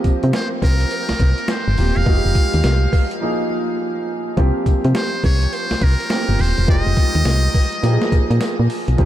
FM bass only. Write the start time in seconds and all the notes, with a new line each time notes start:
0.05 C3
0.24 C3
0.62 C2
1.10 C2
1.20 C2
1.68 G1
1.78 D#1
1.97 E1
2.07 F1
2.25 F1
2.54 D#2
2.65 C2
4.38 C2
4.66 C3
4.85 C3
5.24 C2
5.71 C2
5.82 C2
6.29 G1
6.40 D#1
6.58 E1
6.68 F1
6.87 F1
7.15 D#2
7.26 C2
7.83 A#2
8.13 A#2
8.31 A#2
8.60 A#2
8.88 B1
8.99 C2